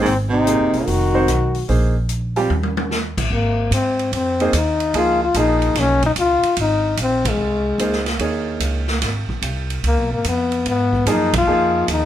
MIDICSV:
0, 0, Header, 1, 7, 480
1, 0, Start_track
1, 0, Tempo, 407609
1, 62, Time_signature, 4, 2, 24, 8
1, 14192, End_track
2, 0, Start_track
2, 0, Title_t, "Grand piano"
2, 0, Program_c, 0, 0
2, 548, Note_on_c, 0, 63, 47
2, 549, Note_on_c, 0, 58, 52
2, 554, Note_on_c, 0, 68, 49
2, 558, Note_on_c, 0, 72, 63
2, 1025, Note_off_c, 0, 58, 0
2, 1025, Note_off_c, 0, 63, 0
2, 1028, Note_off_c, 0, 68, 0
2, 1030, Note_off_c, 0, 72, 0
2, 1342, Note_on_c, 0, 63, 63
2, 1345, Note_on_c, 0, 60, 65
2, 1350, Note_on_c, 0, 66, 65
2, 1352, Note_on_c, 0, 72, 79
2, 1486, Note_off_c, 0, 63, 0
2, 1488, Note_off_c, 0, 60, 0
2, 1490, Note_off_c, 0, 66, 0
2, 1491, Note_off_c, 0, 72, 0
2, 1984, Note_on_c, 0, 58, 54
2, 1990, Note_on_c, 0, 63, 50
2, 1991, Note_on_c, 0, 68, 49
2, 1991, Note_on_c, 0, 72, 58
2, 2269, Note_off_c, 0, 58, 0
2, 2272, Note_off_c, 0, 63, 0
2, 2273, Note_off_c, 0, 68, 0
2, 2273, Note_off_c, 0, 72, 0
2, 2782, Note_on_c, 0, 60, 68
2, 2787, Note_on_c, 0, 55, 76
2, 2787, Note_on_c, 0, 65, 65
2, 2791, Note_on_c, 0, 67, 81
2, 2925, Note_off_c, 0, 60, 0
2, 2928, Note_off_c, 0, 55, 0
2, 2928, Note_off_c, 0, 65, 0
2, 2930, Note_off_c, 0, 67, 0
2, 5190, Note_on_c, 0, 58, 66
2, 5192, Note_on_c, 0, 63, 64
2, 5192, Note_on_c, 0, 68, 60
2, 5202, Note_on_c, 0, 72, 71
2, 5329, Note_off_c, 0, 58, 0
2, 5330, Note_off_c, 0, 63, 0
2, 5330, Note_off_c, 0, 68, 0
2, 5335, Note_off_c, 0, 72, 0
2, 5823, Note_on_c, 0, 53, 58
2, 5827, Note_on_c, 0, 58, 57
2, 5829, Note_on_c, 0, 63, 51
2, 5833, Note_on_c, 0, 68, 70
2, 6108, Note_off_c, 0, 53, 0
2, 6110, Note_off_c, 0, 58, 0
2, 6111, Note_off_c, 0, 63, 0
2, 6113, Note_off_c, 0, 68, 0
2, 6308, Note_on_c, 0, 53, 64
2, 6311, Note_on_c, 0, 58, 53
2, 6315, Note_on_c, 0, 63, 57
2, 6321, Note_on_c, 0, 68, 67
2, 7039, Note_off_c, 0, 53, 0
2, 7040, Note_off_c, 0, 58, 0
2, 7043, Note_off_c, 0, 63, 0
2, 7045, Note_off_c, 0, 68, 0
2, 9179, Note_on_c, 0, 63, 51
2, 9181, Note_on_c, 0, 58, 55
2, 9185, Note_on_c, 0, 68, 53
2, 9188, Note_on_c, 0, 72, 66
2, 9467, Note_off_c, 0, 63, 0
2, 9468, Note_off_c, 0, 58, 0
2, 9470, Note_off_c, 0, 68, 0
2, 9472, Note_off_c, 0, 72, 0
2, 9658, Note_on_c, 0, 58, 52
2, 9661, Note_on_c, 0, 63, 52
2, 9662, Note_on_c, 0, 68, 48
2, 9663, Note_on_c, 0, 73, 60
2, 10395, Note_off_c, 0, 58, 0
2, 10396, Note_off_c, 0, 63, 0
2, 10397, Note_off_c, 0, 68, 0
2, 10398, Note_off_c, 0, 73, 0
2, 13031, Note_on_c, 0, 53, 65
2, 13036, Note_on_c, 0, 58, 58
2, 13036, Note_on_c, 0, 63, 56
2, 13040, Note_on_c, 0, 68, 73
2, 13314, Note_off_c, 0, 53, 0
2, 13317, Note_off_c, 0, 58, 0
2, 13317, Note_off_c, 0, 63, 0
2, 13319, Note_off_c, 0, 68, 0
2, 13510, Note_on_c, 0, 53, 63
2, 13518, Note_on_c, 0, 58, 53
2, 13518, Note_on_c, 0, 63, 56
2, 13520, Note_on_c, 0, 68, 67
2, 14192, Note_off_c, 0, 53, 0
2, 14192, Note_off_c, 0, 58, 0
2, 14192, Note_off_c, 0, 63, 0
2, 14192, Note_off_c, 0, 68, 0
2, 14192, End_track
3, 0, Start_track
3, 0, Title_t, "Trombone"
3, 0, Program_c, 1, 57
3, 65, Note_on_c, 1, 60, 91
3, 207, Note_off_c, 1, 60, 0
3, 381, Note_on_c, 1, 63, 97
3, 1011, Note_on_c, 1, 66, 101
3, 1029, Note_off_c, 1, 63, 0
3, 1976, Note_off_c, 1, 66, 0
3, 3925, Note_on_c, 1, 58, 86
3, 4359, Note_off_c, 1, 58, 0
3, 4399, Note_on_c, 1, 60, 94
3, 4836, Note_off_c, 1, 60, 0
3, 4877, Note_on_c, 1, 60, 97
3, 5359, Note_on_c, 1, 63, 98
3, 5377, Note_off_c, 1, 60, 0
3, 5859, Note_on_c, 1, 65, 104
3, 5877, Note_off_c, 1, 63, 0
3, 6158, Note_off_c, 1, 65, 0
3, 6172, Note_on_c, 1, 65, 92
3, 6306, Note_off_c, 1, 65, 0
3, 6347, Note_on_c, 1, 63, 98
3, 6822, Note_on_c, 1, 61, 101
3, 6840, Note_off_c, 1, 63, 0
3, 7120, Note_off_c, 1, 61, 0
3, 7138, Note_on_c, 1, 63, 88
3, 7201, Note_off_c, 1, 63, 0
3, 7294, Note_on_c, 1, 65, 97
3, 7724, Note_off_c, 1, 65, 0
3, 7786, Note_on_c, 1, 63, 100
3, 8211, Note_off_c, 1, 63, 0
3, 8272, Note_on_c, 1, 60, 95
3, 8593, Note_on_c, 1, 56, 81
3, 8611, Note_off_c, 1, 60, 0
3, 9526, Note_off_c, 1, 56, 0
3, 11623, Note_on_c, 1, 58, 87
3, 11901, Note_off_c, 1, 58, 0
3, 11936, Note_on_c, 1, 58, 82
3, 12070, Note_off_c, 1, 58, 0
3, 12109, Note_on_c, 1, 59, 89
3, 12534, Note_off_c, 1, 59, 0
3, 12591, Note_on_c, 1, 59, 97
3, 13075, Note_on_c, 1, 63, 105
3, 13093, Note_off_c, 1, 59, 0
3, 13368, Note_off_c, 1, 63, 0
3, 13401, Note_on_c, 1, 65, 100
3, 13970, Note_off_c, 1, 65, 0
3, 14039, Note_on_c, 1, 63, 94
3, 14192, Note_off_c, 1, 63, 0
3, 14192, End_track
4, 0, Start_track
4, 0, Title_t, "Baritone saxophone"
4, 0, Program_c, 2, 67
4, 18, Note_on_c, 2, 44, 84
4, 171, Note_off_c, 2, 44, 0
4, 340, Note_on_c, 2, 48, 85
4, 1011, Note_on_c, 2, 51, 85
4, 1029, Note_off_c, 2, 48, 0
4, 1976, Note_off_c, 2, 51, 0
4, 14192, End_track
5, 0, Start_track
5, 0, Title_t, "Upright bass"
5, 0, Program_c, 3, 32
5, 64, Note_on_c, 3, 32, 88
5, 658, Note_off_c, 3, 32, 0
5, 707, Note_on_c, 3, 30, 63
5, 853, Note_off_c, 3, 30, 0
5, 864, Note_on_c, 3, 28, 67
5, 1011, Note_off_c, 3, 28, 0
5, 1031, Note_on_c, 3, 29, 84
5, 1473, Note_off_c, 3, 29, 0
5, 1502, Note_on_c, 3, 35, 73
5, 1948, Note_off_c, 3, 35, 0
5, 1991, Note_on_c, 3, 34, 86
5, 2898, Note_off_c, 3, 34, 0
5, 2942, Note_on_c, 3, 39, 80
5, 3692, Note_off_c, 3, 39, 0
5, 3739, Note_on_c, 3, 33, 68
5, 3889, Note_off_c, 3, 33, 0
5, 3894, Note_on_c, 3, 32, 84
5, 4362, Note_off_c, 3, 32, 0
5, 4367, Note_on_c, 3, 44, 84
5, 4839, Note_off_c, 3, 44, 0
5, 4851, Note_on_c, 3, 41, 76
5, 5321, Note_off_c, 3, 41, 0
5, 5333, Note_on_c, 3, 39, 89
5, 5802, Note_off_c, 3, 39, 0
5, 5814, Note_on_c, 3, 37, 84
5, 6282, Note_off_c, 3, 37, 0
5, 6292, Note_on_c, 3, 34, 82
5, 6761, Note_off_c, 3, 34, 0
5, 6768, Note_on_c, 3, 35, 83
5, 7239, Note_off_c, 3, 35, 0
5, 7254, Note_on_c, 3, 37, 88
5, 7553, Note_off_c, 3, 37, 0
5, 7736, Note_on_c, 3, 32, 89
5, 8204, Note_off_c, 3, 32, 0
5, 8210, Note_on_c, 3, 34, 83
5, 8675, Note_off_c, 3, 34, 0
5, 8682, Note_on_c, 3, 36, 78
5, 9157, Note_off_c, 3, 36, 0
5, 9163, Note_on_c, 3, 37, 85
5, 9637, Note_off_c, 3, 37, 0
5, 9645, Note_on_c, 3, 39, 81
5, 10118, Note_off_c, 3, 39, 0
5, 10126, Note_on_c, 3, 37, 84
5, 10599, Note_off_c, 3, 37, 0
5, 10617, Note_on_c, 3, 32, 81
5, 10916, Note_off_c, 3, 32, 0
5, 11089, Note_on_c, 3, 36, 86
5, 11561, Note_off_c, 3, 36, 0
5, 11581, Note_on_c, 3, 37, 77
5, 11746, Note_off_c, 3, 37, 0
5, 11746, Note_on_c, 3, 35, 56
5, 11904, Note_off_c, 3, 35, 0
5, 11910, Note_on_c, 3, 32, 58
5, 12055, Note_off_c, 3, 32, 0
5, 12065, Note_on_c, 3, 41, 85
5, 12530, Note_off_c, 3, 41, 0
5, 12551, Note_on_c, 3, 44, 80
5, 13013, Note_off_c, 3, 44, 0
5, 13021, Note_on_c, 3, 42, 88
5, 13488, Note_off_c, 3, 42, 0
5, 13510, Note_on_c, 3, 41, 83
5, 13972, Note_off_c, 3, 41, 0
5, 13991, Note_on_c, 3, 39, 93
5, 14192, Note_off_c, 3, 39, 0
5, 14192, End_track
6, 0, Start_track
6, 0, Title_t, "Muted upright bass strokes"
6, 7572, Note_on_c, 9, 29, 39
6, 7690, Note_off_c, 9, 29, 0
6, 10940, Note_on_c, 9, 29, 38
6, 11058, Note_off_c, 9, 29, 0
6, 14192, End_track
7, 0, Start_track
7, 0, Title_t, "Drums"
7, 69, Note_on_c, 9, 46, 45
7, 187, Note_off_c, 9, 46, 0
7, 552, Note_on_c, 9, 42, 53
7, 670, Note_off_c, 9, 42, 0
7, 866, Note_on_c, 9, 46, 37
7, 983, Note_off_c, 9, 46, 0
7, 1029, Note_on_c, 9, 46, 47
7, 1147, Note_off_c, 9, 46, 0
7, 1508, Note_on_c, 9, 37, 59
7, 1508, Note_on_c, 9, 42, 51
7, 1626, Note_off_c, 9, 37, 0
7, 1626, Note_off_c, 9, 42, 0
7, 1820, Note_on_c, 9, 46, 38
7, 1938, Note_off_c, 9, 46, 0
7, 1986, Note_on_c, 9, 46, 44
7, 2104, Note_off_c, 9, 46, 0
7, 2460, Note_on_c, 9, 42, 53
7, 2578, Note_off_c, 9, 42, 0
7, 2780, Note_on_c, 9, 46, 36
7, 2898, Note_off_c, 9, 46, 0
7, 2944, Note_on_c, 9, 48, 48
7, 3061, Note_off_c, 9, 48, 0
7, 3099, Note_on_c, 9, 48, 57
7, 3217, Note_off_c, 9, 48, 0
7, 3263, Note_on_c, 9, 48, 79
7, 3381, Note_off_c, 9, 48, 0
7, 3427, Note_on_c, 9, 38, 54
7, 3545, Note_off_c, 9, 38, 0
7, 3739, Note_on_c, 9, 36, 76
7, 3741, Note_on_c, 9, 49, 77
7, 3857, Note_off_c, 9, 36, 0
7, 3859, Note_off_c, 9, 49, 0
7, 4380, Note_on_c, 9, 44, 57
7, 4380, Note_on_c, 9, 51, 67
7, 4498, Note_off_c, 9, 44, 0
7, 4498, Note_off_c, 9, 51, 0
7, 4702, Note_on_c, 9, 51, 42
7, 4819, Note_off_c, 9, 51, 0
7, 4860, Note_on_c, 9, 51, 61
7, 4978, Note_off_c, 9, 51, 0
7, 5182, Note_on_c, 9, 51, 43
7, 5300, Note_off_c, 9, 51, 0
7, 5336, Note_on_c, 9, 44, 58
7, 5336, Note_on_c, 9, 51, 62
7, 5454, Note_off_c, 9, 44, 0
7, 5454, Note_off_c, 9, 51, 0
7, 5654, Note_on_c, 9, 51, 44
7, 5772, Note_off_c, 9, 51, 0
7, 5818, Note_on_c, 9, 51, 60
7, 5935, Note_off_c, 9, 51, 0
7, 6293, Note_on_c, 9, 44, 58
7, 6293, Note_on_c, 9, 51, 61
7, 6411, Note_off_c, 9, 44, 0
7, 6411, Note_off_c, 9, 51, 0
7, 6616, Note_on_c, 9, 51, 41
7, 6734, Note_off_c, 9, 51, 0
7, 6777, Note_on_c, 9, 38, 39
7, 6777, Note_on_c, 9, 51, 62
7, 6894, Note_off_c, 9, 38, 0
7, 6894, Note_off_c, 9, 51, 0
7, 7095, Note_on_c, 9, 51, 45
7, 7098, Note_on_c, 9, 36, 54
7, 7213, Note_off_c, 9, 51, 0
7, 7215, Note_off_c, 9, 36, 0
7, 7253, Note_on_c, 9, 44, 46
7, 7253, Note_on_c, 9, 51, 66
7, 7370, Note_off_c, 9, 44, 0
7, 7370, Note_off_c, 9, 51, 0
7, 7577, Note_on_c, 9, 51, 47
7, 7694, Note_off_c, 9, 51, 0
7, 7732, Note_on_c, 9, 51, 66
7, 7850, Note_off_c, 9, 51, 0
7, 8212, Note_on_c, 9, 44, 59
7, 8212, Note_on_c, 9, 51, 67
7, 8330, Note_off_c, 9, 44, 0
7, 8330, Note_off_c, 9, 51, 0
7, 8537, Note_on_c, 9, 36, 76
7, 8541, Note_on_c, 9, 51, 69
7, 8655, Note_off_c, 9, 36, 0
7, 8659, Note_off_c, 9, 51, 0
7, 9179, Note_on_c, 9, 44, 49
7, 9179, Note_on_c, 9, 51, 62
7, 9296, Note_off_c, 9, 44, 0
7, 9296, Note_off_c, 9, 51, 0
7, 9335, Note_on_c, 9, 38, 29
7, 9452, Note_off_c, 9, 38, 0
7, 9494, Note_on_c, 9, 51, 45
7, 9495, Note_on_c, 9, 38, 46
7, 9612, Note_off_c, 9, 51, 0
7, 9613, Note_off_c, 9, 38, 0
7, 9650, Note_on_c, 9, 51, 55
7, 9767, Note_off_c, 9, 51, 0
7, 10132, Note_on_c, 9, 44, 54
7, 10132, Note_on_c, 9, 51, 64
7, 10249, Note_off_c, 9, 44, 0
7, 10249, Note_off_c, 9, 51, 0
7, 10452, Note_on_c, 9, 38, 46
7, 10570, Note_off_c, 9, 38, 0
7, 10619, Note_on_c, 9, 38, 38
7, 10619, Note_on_c, 9, 51, 61
7, 10736, Note_off_c, 9, 38, 0
7, 10736, Note_off_c, 9, 51, 0
7, 10939, Note_on_c, 9, 36, 50
7, 11057, Note_off_c, 9, 36, 0
7, 11098, Note_on_c, 9, 44, 48
7, 11098, Note_on_c, 9, 51, 69
7, 11216, Note_off_c, 9, 44, 0
7, 11216, Note_off_c, 9, 51, 0
7, 11424, Note_on_c, 9, 51, 45
7, 11542, Note_off_c, 9, 51, 0
7, 11585, Note_on_c, 9, 51, 61
7, 11703, Note_off_c, 9, 51, 0
7, 12064, Note_on_c, 9, 44, 58
7, 12064, Note_on_c, 9, 51, 62
7, 12182, Note_off_c, 9, 44, 0
7, 12182, Note_off_c, 9, 51, 0
7, 12385, Note_on_c, 9, 51, 42
7, 12503, Note_off_c, 9, 51, 0
7, 12550, Note_on_c, 9, 51, 55
7, 12667, Note_off_c, 9, 51, 0
7, 12869, Note_on_c, 9, 36, 47
7, 12987, Note_off_c, 9, 36, 0
7, 13030, Note_on_c, 9, 44, 57
7, 13030, Note_on_c, 9, 51, 69
7, 13148, Note_off_c, 9, 44, 0
7, 13148, Note_off_c, 9, 51, 0
7, 13348, Note_on_c, 9, 51, 73
7, 13350, Note_on_c, 9, 36, 83
7, 13466, Note_off_c, 9, 51, 0
7, 13467, Note_off_c, 9, 36, 0
7, 13991, Note_on_c, 9, 44, 58
7, 13991, Note_on_c, 9, 51, 66
7, 14109, Note_off_c, 9, 44, 0
7, 14109, Note_off_c, 9, 51, 0
7, 14192, End_track
0, 0, End_of_file